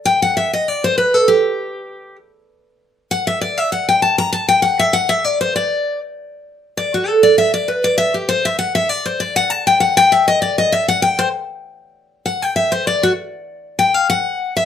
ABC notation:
X:1
M:4/4
L:1/8
Q:"Swing" 1/4=197
K:Dmix
V:1 name="Steel-string acoustic guitar"
g f e _e d c B A | G6 z2 | z4 f e d e | f g a _b a g f e |
f e d c d3 z | z4 d F A d | e d B d e G c e | f e d c d f a g |
f g e _e d e =e f | g c z6 | f g e c d F z2 | z2 g =f ^f3 e |]